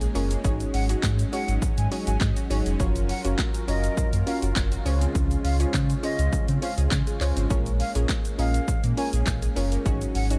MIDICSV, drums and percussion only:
0, 0, Header, 1, 2, 480
1, 0, Start_track
1, 0, Tempo, 588235
1, 363, Time_signature, 4, 2, 24, 8
1, 8475, End_track
2, 0, Start_track
2, 0, Title_t, "Drums"
2, 10, Note_on_c, 9, 42, 58
2, 10, Note_on_c, 9, 82, 55
2, 92, Note_off_c, 9, 42, 0
2, 92, Note_off_c, 9, 82, 0
2, 124, Note_on_c, 9, 82, 55
2, 125, Note_off_c, 9, 82, 0
2, 125, Note_on_c, 9, 46, 75
2, 125, Note_on_c, 9, 82, 54
2, 207, Note_off_c, 9, 46, 0
2, 207, Note_off_c, 9, 82, 0
2, 251, Note_on_c, 9, 42, 75
2, 251, Note_on_c, 9, 82, 74
2, 333, Note_off_c, 9, 42, 0
2, 333, Note_off_c, 9, 82, 0
2, 363, Note_on_c, 9, 36, 119
2, 363, Note_on_c, 9, 82, 83
2, 445, Note_off_c, 9, 36, 0
2, 445, Note_off_c, 9, 82, 0
2, 491, Note_on_c, 9, 82, 53
2, 493, Note_off_c, 9, 82, 0
2, 493, Note_on_c, 9, 42, 52
2, 493, Note_on_c, 9, 82, 50
2, 574, Note_off_c, 9, 42, 0
2, 574, Note_off_c, 9, 82, 0
2, 604, Note_on_c, 9, 46, 82
2, 604, Note_on_c, 9, 82, 57
2, 685, Note_off_c, 9, 46, 0
2, 685, Note_off_c, 9, 82, 0
2, 729, Note_on_c, 9, 42, 78
2, 729, Note_on_c, 9, 82, 79
2, 732, Note_off_c, 9, 82, 0
2, 732, Note_on_c, 9, 82, 55
2, 811, Note_off_c, 9, 42, 0
2, 813, Note_off_c, 9, 82, 0
2, 839, Note_on_c, 9, 38, 100
2, 842, Note_on_c, 9, 82, 81
2, 843, Note_off_c, 9, 82, 0
2, 843, Note_on_c, 9, 36, 107
2, 843, Note_on_c, 9, 82, 75
2, 845, Note_on_c, 9, 39, 125
2, 920, Note_off_c, 9, 38, 0
2, 924, Note_off_c, 9, 82, 0
2, 925, Note_off_c, 9, 36, 0
2, 926, Note_off_c, 9, 39, 0
2, 971, Note_on_c, 9, 82, 53
2, 972, Note_off_c, 9, 82, 0
2, 972, Note_on_c, 9, 42, 59
2, 972, Note_on_c, 9, 82, 59
2, 1054, Note_off_c, 9, 42, 0
2, 1054, Note_off_c, 9, 82, 0
2, 1084, Note_on_c, 9, 82, 50
2, 1085, Note_off_c, 9, 82, 0
2, 1085, Note_on_c, 9, 46, 70
2, 1085, Note_on_c, 9, 82, 52
2, 1167, Note_off_c, 9, 46, 0
2, 1167, Note_off_c, 9, 82, 0
2, 1210, Note_on_c, 9, 82, 58
2, 1211, Note_off_c, 9, 82, 0
2, 1211, Note_on_c, 9, 42, 65
2, 1211, Note_on_c, 9, 82, 63
2, 1293, Note_off_c, 9, 42, 0
2, 1293, Note_off_c, 9, 82, 0
2, 1322, Note_on_c, 9, 36, 114
2, 1322, Note_on_c, 9, 82, 88
2, 1325, Note_off_c, 9, 82, 0
2, 1325, Note_on_c, 9, 82, 83
2, 1404, Note_off_c, 9, 36, 0
2, 1407, Note_off_c, 9, 82, 0
2, 1450, Note_on_c, 9, 82, 49
2, 1451, Note_off_c, 9, 82, 0
2, 1451, Note_on_c, 9, 42, 67
2, 1451, Note_on_c, 9, 82, 70
2, 1533, Note_off_c, 9, 42, 0
2, 1533, Note_off_c, 9, 82, 0
2, 1564, Note_on_c, 9, 46, 77
2, 1564, Note_on_c, 9, 82, 54
2, 1646, Note_off_c, 9, 46, 0
2, 1646, Note_off_c, 9, 82, 0
2, 1690, Note_on_c, 9, 42, 82
2, 1690, Note_on_c, 9, 82, 59
2, 1772, Note_off_c, 9, 42, 0
2, 1772, Note_off_c, 9, 82, 0
2, 1797, Note_on_c, 9, 38, 98
2, 1803, Note_on_c, 9, 39, 122
2, 1803, Note_on_c, 9, 82, 71
2, 1805, Note_on_c, 9, 36, 126
2, 1878, Note_off_c, 9, 38, 0
2, 1884, Note_off_c, 9, 39, 0
2, 1885, Note_off_c, 9, 82, 0
2, 1886, Note_off_c, 9, 36, 0
2, 1930, Note_on_c, 9, 42, 58
2, 1930, Note_on_c, 9, 82, 56
2, 2012, Note_off_c, 9, 42, 0
2, 2012, Note_off_c, 9, 82, 0
2, 2044, Note_on_c, 9, 82, 52
2, 2045, Note_off_c, 9, 82, 0
2, 2045, Note_on_c, 9, 46, 76
2, 2045, Note_on_c, 9, 82, 51
2, 2127, Note_off_c, 9, 46, 0
2, 2127, Note_off_c, 9, 82, 0
2, 2171, Note_on_c, 9, 42, 75
2, 2171, Note_on_c, 9, 82, 75
2, 2253, Note_off_c, 9, 42, 0
2, 2253, Note_off_c, 9, 82, 0
2, 2283, Note_on_c, 9, 36, 124
2, 2283, Note_on_c, 9, 82, 73
2, 2365, Note_off_c, 9, 36, 0
2, 2365, Note_off_c, 9, 82, 0
2, 2411, Note_on_c, 9, 82, 54
2, 2413, Note_off_c, 9, 82, 0
2, 2413, Note_on_c, 9, 42, 50
2, 2413, Note_on_c, 9, 82, 51
2, 2494, Note_off_c, 9, 42, 0
2, 2494, Note_off_c, 9, 82, 0
2, 2524, Note_on_c, 9, 46, 82
2, 2524, Note_on_c, 9, 82, 61
2, 2606, Note_off_c, 9, 46, 0
2, 2606, Note_off_c, 9, 82, 0
2, 2649, Note_on_c, 9, 42, 76
2, 2649, Note_on_c, 9, 82, 75
2, 2651, Note_off_c, 9, 82, 0
2, 2651, Note_on_c, 9, 82, 52
2, 2731, Note_off_c, 9, 42, 0
2, 2733, Note_off_c, 9, 82, 0
2, 2759, Note_on_c, 9, 38, 103
2, 2763, Note_on_c, 9, 82, 69
2, 2764, Note_on_c, 9, 36, 110
2, 2765, Note_on_c, 9, 39, 125
2, 2840, Note_off_c, 9, 38, 0
2, 2845, Note_off_c, 9, 36, 0
2, 2845, Note_off_c, 9, 82, 0
2, 2847, Note_off_c, 9, 39, 0
2, 2890, Note_on_c, 9, 82, 52
2, 2893, Note_off_c, 9, 82, 0
2, 2893, Note_on_c, 9, 42, 57
2, 2893, Note_on_c, 9, 82, 56
2, 2974, Note_off_c, 9, 42, 0
2, 2974, Note_off_c, 9, 82, 0
2, 3004, Note_on_c, 9, 82, 51
2, 3005, Note_off_c, 9, 82, 0
2, 3005, Note_on_c, 9, 46, 75
2, 3005, Note_on_c, 9, 82, 52
2, 3087, Note_off_c, 9, 46, 0
2, 3087, Note_off_c, 9, 82, 0
2, 3130, Note_on_c, 9, 82, 59
2, 3132, Note_off_c, 9, 82, 0
2, 3132, Note_on_c, 9, 42, 64
2, 3132, Note_on_c, 9, 82, 64
2, 3213, Note_off_c, 9, 42, 0
2, 3213, Note_off_c, 9, 82, 0
2, 3242, Note_on_c, 9, 36, 115
2, 3243, Note_on_c, 9, 82, 86
2, 3245, Note_off_c, 9, 82, 0
2, 3245, Note_on_c, 9, 82, 86
2, 3324, Note_off_c, 9, 36, 0
2, 3327, Note_off_c, 9, 82, 0
2, 3370, Note_on_c, 9, 82, 49
2, 3371, Note_off_c, 9, 82, 0
2, 3371, Note_on_c, 9, 42, 68
2, 3371, Note_on_c, 9, 82, 68
2, 3453, Note_off_c, 9, 42, 0
2, 3453, Note_off_c, 9, 82, 0
2, 3484, Note_on_c, 9, 46, 77
2, 3484, Note_on_c, 9, 82, 57
2, 3566, Note_off_c, 9, 46, 0
2, 3566, Note_off_c, 9, 82, 0
2, 3610, Note_on_c, 9, 42, 78
2, 3610, Note_on_c, 9, 82, 59
2, 3692, Note_off_c, 9, 42, 0
2, 3692, Note_off_c, 9, 82, 0
2, 3717, Note_on_c, 9, 38, 99
2, 3723, Note_on_c, 9, 39, 123
2, 3723, Note_on_c, 9, 82, 73
2, 3724, Note_off_c, 9, 82, 0
2, 3724, Note_on_c, 9, 82, 70
2, 3725, Note_on_c, 9, 36, 125
2, 3798, Note_off_c, 9, 38, 0
2, 3804, Note_off_c, 9, 39, 0
2, 3805, Note_off_c, 9, 82, 0
2, 3806, Note_off_c, 9, 36, 0
2, 3850, Note_on_c, 9, 42, 55
2, 3850, Note_on_c, 9, 82, 56
2, 3932, Note_off_c, 9, 42, 0
2, 3932, Note_off_c, 9, 82, 0
2, 3965, Note_on_c, 9, 46, 74
2, 3965, Note_on_c, 9, 82, 53
2, 4047, Note_off_c, 9, 46, 0
2, 4047, Note_off_c, 9, 82, 0
2, 4091, Note_on_c, 9, 82, 45
2, 4092, Note_off_c, 9, 82, 0
2, 4092, Note_on_c, 9, 42, 76
2, 4092, Note_on_c, 9, 82, 71
2, 4173, Note_off_c, 9, 42, 0
2, 4173, Note_off_c, 9, 82, 0
2, 4203, Note_on_c, 9, 36, 127
2, 4203, Note_on_c, 9, 82, 69
2, 4204, Note_off_c, 9, 82, 0
2, 4204, Note_on_c, 9, 82, 80
2, 4285, Note_off_c, 9, 36, 0
2, 4285, Note_off_c, 9, 82, 0
2, 4331, Note_on_c, 9, 82, 51
2, 4333, Note_off_c, 9, 82, 0
2, 4333, Note_on_c, 9, 42, 50
2, 4333, Note_on_c, 9, 82, 51
2, 4415, Note_off_c, 9, 42, 0
2, 4415, Note_off_c, 9, 82, 0
2, 4444, Note_on_c, 9, 46, 80
2, 4444, Note_on_c, 9, 82, 58
2, 4526, Note_off_c, 9, 46, 0
2, 4526, Note_off_c, 9, 82, 0
2, 4569, Note_on_c, 9, 42, 77
2, 4569, Note_on_c, 9, 82, 78
2, 4571, Note_off_c, 9, 82, 0
2, 4571, Note_on_c, 9, 82, 55
2, 4651, Note_off_c, 9, 42, 0
2, 4653, Note_off_c, 9, 82, 0
2, 4679, Note_on_c, 9, 38, 104
2, 4683, Note_on_c, 9, 82, 79
2, 4684, Note_on_c, 9, 36, 105
2, 4685, Note_on_c, 9, 39, 121
2, 4761, Note_off_c, 9, 38, 0
2, 4764, Note_off_c, 9, 82, 0
2, 4765, Note_off_c, 9, 36, 0
2, 4767, Note_off_c, 9, 39, 0
2, 4810, Note_on_c, 9, 82, 53
2, 4813, Note_off_c, 9, 82, 0
2, 4813, Note_on_c, 9, 42, 59
2, 4813, Note_on_c, 9, 82, 59
2, 4894, Note_off_c, 9, 42, 0
2, 4894, Note_off_c, 9, 82, 0
2, 4924, Note_on_c, 9, 82, 50
2, 4925, Note_off_c, 9, 82, 0
2, 4925, Note_on_c, 9, 46, 76
2, 4925, Note_on_c, 9, 82, 52
2, 5007, Note_off_c, 9, 46, 0
2, 5007, Note_off_c, 9, 82, 0
2, 5050, Note_on_c, 9, 82, 57
2, 5052, Note_off_c, 9, 82, 0
2, 5052, Note_on_c, 9, 42, 64
2, 5052, Note_on_c, 9, 82, 64
2, 5133, Note_off_c, 9, 42, 0
2, 5133, Note_off_c, 9, 82, 0
2, 5162, Note_on_c, 9, 36, 111
2, 5162, Note_on_c, 9, 82, 88
2, 5165, Note_off_c, 9, 82, 0
2, 5165, Note_on_c, 9, 82, 87
2, 5244, Note_off_c, 9, 36, 0
2, 5247, Note_off_c, 9, 82, 0
2, 5289, Note_on_c, 9, 82, 49
2, 5291, Note_off_c, 9, 82, 0
2, 5291, Note_on_c, 9, 42, 69
2, 5291, Note_on_c, 9, 82, 67
2, 5373, Note_off_c, 9, 42, 0
2, 5373, Note_off_c, 9, 82, 0
2, 5404, Note_on_c, 9, 46, 80
2, 5404, Note_on_c, 9, 82, 58
2, 5486, Note_off_c, 9, 46, 0
2, 5486, Note_off_c, 9, 82, 0
2, 5530, Note_on_c, 9, 42, 77
2, 5530, Note_on_c, 9, 82, 78
2, 5612, Note_off_c, 9, 42, 0
2, 5612, Note_off_c, 9, 82, 0
2, 5637, Note_on_c, 9, 38, 102
2, 5642, Note_on_c, 9, 82, 72
2, 5643, Note_off_c, 9, 82, 0
2, 5643, Note_on_c, 9, 39, 121
2, 5643, Note_on_c, 9, 82, 73
2, 5645, Note_on_c, 9, 36, 123
2, 5718, Note_off_c, 9, 38, 0
2, 5724, Note_off_c, 9, 39, 0
2, 5725, Note_off_c, 9, 82, 0
2, 5726, Note_off_c, 9, 36, 0
2, 5770, Note_on_c, 9, 42, 58
2, 5770, Note_on_c, 9, 82, 58
2, 5852, Note_off_c, 9, 42, 0
2, 5852, Note_off_c, 9, 82, 0
2, 5883, Note_on_c, 9, 39, 67
2, 5884, Note_on_c, 9, 82, 50
2, 5885, Note_off_c, 9, 82, 0
2, 5885, Note_on_c, 9, 46, 75
2, 5885, Note_on_c, 9, 82, 55
2, 5965, Note_off_c, 9, 39, 0
2, 5967, Note_off_c, 9, 46, 0
2, 5967, Note_off_c, 9, 82, 0
2, 6010, Note_on_c, 9, 82, 44
2, 6012, Note_off_c, 9, 82, 0
2, 6012, Note_on_c, 9, 42, 74
2, 6012, Note_on_c, 9, 82, 77
2, 6093, Note_off_c, 9, 42, 0
2, 6093, Note_off_c, 9, 82, 0
2, 6122, Note_on_c, 9, 82, 72
2, 6124, Note_off_c, 9, 82, 0
2, 6124, Note_on_c, 9, 36, 126
2, 6124, Note_on_c, 9, 82, 81
2, 6205, Note_off_c, 9, 36, 0
2, 6205, Note_off_c, 9, 82, 0
2, 6250, Note_on_c, 9, 82, 53
2, 6253, Note_off_c, 9, 82, 0
2, 6253, Note_on_c, 9, 42, 52
2, 6253, Note_on_c, 9, 82, 51
2, 6335, Note_off_c, 9, 42, 0
2, 6335, Note_off_c, 9, 82, 0
2, 6364, Note_on_c, 9, 46, 80
2, 6364, Note_on_c, 9, 82, 57
2, 6445, Note_off_c, 9, 46, 0
2, 6445, Note_off_c, 9, 82, 0
2, 6489, Note_on_c, 9, 42, 76
2, 6489, Note_on_c, 9, 82, 77
2, 6491, Note_off_c, 9, 82, 0
2, 6491, Note_on_c, 9, 82, 53
2, 6571, Note_off_c, 9, 42, 0
2, 6573, Note_off_c, 9, 82, 0
2, 6599, Note_on_c, 9, 38, 99
2, 6602, Note_on_c, 9, 82, 79
2, 6603, Note_off_c, 9, 82, 0
2, 6603, Note_on_c, 9, 82, 75
2, 6604, Note_on_c, 9, 36, 110
2, 6605, Note_on_c, 9, 39, 125
2, 6680, Note_off_c, 9, 38, 0
2, 6685, Note_off_c, 9, 36, 0
2, 6685, Note_off_c, 9, 82, 0
2, 6686, Note_off_c, 9, 39, 0
2, 6731, Note_on_c, 9, 82, 53
2, 6732, Note_off_c, 9, 82, 0
2, 6732, Note_on_c, 9, 42, 58
2, 6732, Note_on_c, 9, 82, 58
2, 6814, Note_off_c, 9, 42, 0
2, 6814, Note_off_c, 9, 82, 0
2, 6845, Note_on_c, 9, 46, 71
2, 6845, Note_on_c, 9, 82, 51
2, 6927, Note_off_c, 9, 46, 0
2, 6927, Note_off_c, 9, 82, 0
2, 6970, Note_on_c, 9, 82, 56
2, 6971, Note_off_c, 9, 82, 0
2, 6971, Note_on_c, 9, 42, 66
2, 6971, Note_on_c, 9, 82, 65
2, 7053, Note_off_c, 9, 42, 0
2, 7053, Note_off_c, 9, 82, 0
2, 7082, Note_on_c, 9, 36, 115
2, 7082, Note_on_c, 9, 82, 88
2, 7085, Note_off_c, 9, 82, 0
2, 7085, Note_on_c, 9, 82, 84
2, 7164, Note_off_c, 9, 36, 0
2, 7167, Note_off_c, 9, 82, 0
2, 7210, Note_on_c, 9, 82, 48
2, 7211, Note_off_c, 9, 82, 0
2, 7211, Note_on_c, 9, 42, 69
2, 7211, Note_on_c, 9, 82, 69
2, 7293, Note_off_c, 9, 42, 0
2, 7293, Note_off_c, 9, 82, 0
2, 7324, Note_on_c, 9, 46, 77
2, 7324, Note_on_c, 9, 82, 57
2, 7405, Note_off_c, 9, 46, 0
2, 7405, Note_off_c, 9, 82, 0
2, 7450, Note_on_c, 9, 42, 82
2, 7450, Note_on_c, 9, 82, 57
2, 7531, Note_off_c, 9, 42, 0
2, 7532, Note_off_c, 9, 82, 0
2, 7556, Note_on_c, 9, 38, 96
2, 7562, Note_on_c, 9, 39, 122
2, 7563, Note_on_c, 9, 82, 73
2, 7565, Note_on_c, 9, 36, 126
2, 7638, Note_off_c, 9, 38, 0
2, 7644, Note_off_c, 9, 39, 0
2, 7645, Note_off_c, 9, 82, 0
2, 7646, Note_off_c, 9, 36, 0
2, 7690, Note_on_c, 9, 42, 59
2, 7690, Note_on_c, 9, 82, 54
2, 7772, Note_off_c, 9, 42, 0
2, 7772, Note_off_c, 9, 82, 0
2, 7805, Note_on_c, 9, 46, 75
2, 7805, Note_on_c, 9, 82, 53
2, 7887, Note_off_c, 9, 46, 0
2, 7887, Note_off_c, 9, 82, 0
2, 7931, Note_on_c, 9, 42, 73
2, 7931, Note_on_c, 9, 82, 75
2, 8013, Note_off_c, 9, 42, 0
2, 8013, Note_off_c, 9, 82, 0
2, 8043, Note_on_c, 9, 36, 123
2, 8043, Note_on_c, 9, 82, 80
2, 8125, Note_off_c, 9, 36, 0
2, 8125, Note_off_c, 9, 82, 0
2, 8171, Note_on_c, 9, 82, 54
2, 8173, Note_off_c, 9, 82, 0
2, 8173, Note_on_c, 9, 42, 51
2, 8173, Note_on_c, 9, 82, 50
2, 8254, Note_off_c, 9, 42, 0
2, 8254, Note_off_c, 9, 82, 0
2, 8284, Note_on_c, 9, 46, 81
2, 8284, Note_on_c, 9, 82, 56
2, 8365, Note_off_c, 9, 46, 0
2, 8365, Note_off_c, 9, 82, 0
2, 8409, Note_on_c, 9, 42, 75
2, 8409, Note_on_c, 9, 82, 73
2, 8412, Note_off_c, 9, 82, 0
2, 8412, Note_on_c, 9, 82, 54
2, 8475, Note_off_c, 9, 42, 0
2, 8475, Note_off_c, 9, 82, 0
2, 8475, End_track
0, 0, End_of_file